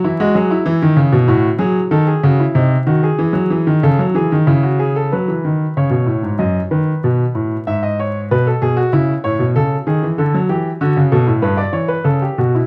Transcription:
X:1
M:4/4
L:1/16
Q:1/4=94
K:F#m
V:1 name="Grand piano"
E F G E4- E F2 G2 A G F E | ^D2 F G4- G A2 G2 E F G A | B4 c4 ^d2 B6 | e ^d c2 B A G F E2 c2 A2 G2 |
[K:D] A2 G2 F2 A2 B d c B A G F E |]
V:2 name="Grand piano" clef=bass
E, G, F,2 E, ^D, C, B,, A,,2 F,2 D,2 C,2 | ^B,,2 ^D,2 E, F, E, D, C, F, E, D, C,4 | F, E, ^D,2 C, B,, A,, G,, F,,2 D,2 B,,2 A,,2 | G,,4 B,,2 B,,2 C,2 A,, B,, C,2 ^D, E, |
[K:D] D, F, E,2 D, C, B,, A,, G,,2 E,2 C,2 B,,2 |]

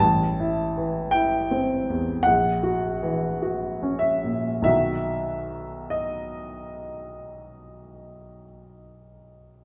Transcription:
X:1
M:4/4
L:1/8
Q:1/4=48
K:Bphr
V:1 name="Grand piano"
a2 g2 f3 e | e2 ^d4 z2 |]
V:2 name="Grand piano" clef=bass
(3A,,, E E, (3E C E,, (3^A,,, F E, (3F ^C ^A,, | [B,,,^D,^DF]8 |]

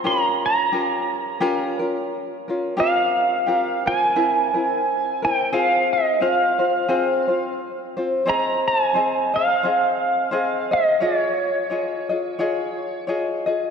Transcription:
X:1
M:4/4
L:1/8
Q:"Swing" 1/4=88
K:Fm
V:1 name="Pedal steel guitar"
b b4 z3 | f3 a4 g | f e f4 z2 | [K:Ab] b a2 f4 e |
d6 z2 |]
V:2 name="Ukulele"
[DFGB]2 [DFGB]2 [DFGB] [DFB]2 [DFB] | [CFGB]2 [CFGB] [CFB] [C=EB] [CEB]2 [CEB] | [CFAc]2 [CFAc] [CFc] [CFAc] [CFc]2 [CFc] | [K:Ab] [CAce]2 [CAce] [CAe] [CAce]2 [CAce] [CAe] |
[FAde]2 [FAde] [FAe] [FAde]2 [FAde] [FAe] |]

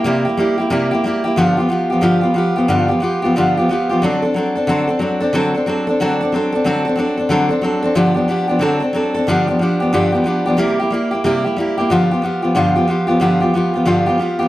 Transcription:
X:1
M:4/4
L:1/8
Q:"Swing" 1/4=182
K:Gmix
V:1 name="Steel-string acoustic guitar"
[C,G,_B,EG] [B,EG] [G,B,EG] [B,EG] [C,G,B,EG] [B,EG] [G,B,EG] [B,EG] | [G,,D,F,B,FG] [F,B,FG] [F,B,FG] [F,B,FG] [G,,D,F,B,FG] [F,B,FG] [F,B,FG] [F,B,FG] | [G,,D,F,B,FG] [F,B,FG] [F,B,FG] [F,B,FG] [G,,D,F,B,FG] [F,B,FG] [F,B,FG] [F,B,FG] | [D,^F,CDA] [CDA] [F,CDA] [CDA] [D,F,CDA] [CDA] [F,CDA] [CDA] |
[D,^F,CDA] [CDA] [F,CDA] [CDA] [D,F,CDA] [CDA] [F,CDA] [CDA] | [D,^F,CDA] [CDA] [F,CDA] [CDA] [D,F,CDA] [CDA] [F,CDA] [CDA] | [G,,D,F,B,DG] [F,B,DG] [F,B,DG] [F,B,DG] [D,^F,CDA] [CDA] [F,CDA] [CDA] | [G,,D,F,B,DG] [F,B,DG] [F,B,DG] [F,B,DG] [G,,D,F,B,DG] [F,B,DG] [F,B,DG] [F,B,DG] |
[C,G,_B,EG] [B,EG] [G,B,EG] [B,EG] [C,G,B,EG] [B,EG] [G,B,EG] [B,EG] | [G,,D,F,B,FG] [F,B,FG] [F,B,FG] [F,B,FG] [G,,D,F,B,FG] [F,B,FG] [F,B,FG] [F,B,FG] | [G,,D,F,B,FG] [F,B,FG] [F,B,FG] [F,B,FG] [G,,D,F,B,FG] [F,B,FG] [F,B,FG] [F,B,FG] |]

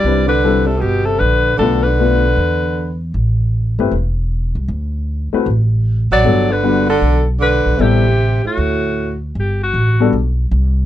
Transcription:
X:1
M:4/4
L:1/8
Q:"Swing" 1/4=155
K:G
V:1 name="Alto saxophone"
d B2 A G A B2 | A B6 z | z8 | z6 z d- |
d B2 A2 z B2 | G3 F4 z | G F3 z4 |]
V:2 name="Grand piano"
[G,CDEB] z [G,CDEA] z4 z | [A,B,D=FB] z [A,B,DFB] z4 z | z3 [A,CEGB] z4 | z3 [A,CEFB] z4 |
[G,B,DFA] z [G,B,DFB] z4 z | [G,B,CEA] z6 z | z3 [G,B,DFA] z4 |]
V:3 name="Tenor saxophone" clef=bass
G, D,2 C, B,, C, D,2 | D, D,6 z | z8 | z6 z F,- |
F, D,2 D,2 z D,2 | C,3 A,,4 z | z8 |]
V:4 name="Upright bass" clef=bass
C,,4 G,,,2 _B,,,2 | B,,,4 E,,4 | A,,,3 G,,, E,,,3 C,, | D,,3 z A,,,3 A,,, |
G,,,4 B,,,3 B,,, | A,,,3 z D,,4 | G,,,2 A,,,2 B,,,2 C,,2 |]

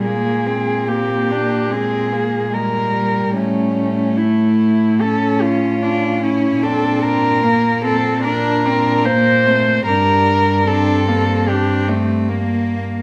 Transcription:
X:1
M:4/4
L:1/8
Q:1/4=74
K:Bblyd
V:1 name="Cello"
_A2 G2 A2 B2 | ^C2 E2 A F2 E | A B2 A B2 c2 | B2 A2 G z3 |]
V:2 name="Cello"
_A,2 C B, A,2 G,2- | G,2 A,2 ^C2 C2 | D2 B, C D D B, C | D2 D C3 B,2 |]
V:3 name="Cello"
B, C B, D C B, _A, G, | A, A,3 ^C2 D C | C2 B, C D C B, A, | G,2 C B, D A, B,2 |]
V:4 name="Cello" clef=bass
B,,8 | A,,8 | B,,8 | G,,8 |]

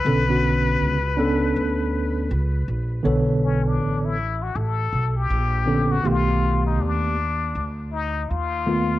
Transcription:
X:1
M:4/4
L:1/16
Q:"Swing 16ths" 1/4=80
K:Bm
V:1 name="Muted trumpet"
B12 z4 | z2 C D2 E2 F A3 G4 F | ^E3 ^D =D4- D z ^D2 E4 |]
V:2 name="Tine electric piano"
[D,B,CA] [D,B,CF]4 z [B,CDA]6 z4 | [D,B,Ac]6 z8 [D,B,CA] z | [^D,A,B,G]6 z8 [D,A,B,^E] z |]
V:3 name="Upright bass" clef=bass
B,,,4 C,,4 D,,4 C,,2 ^A,,,2 | B,,,4 A,,,4 A,,,2 B,,,2 ^A,,,4 | B,,,4 ^D,,4 =D,,4 ^D,,4 |]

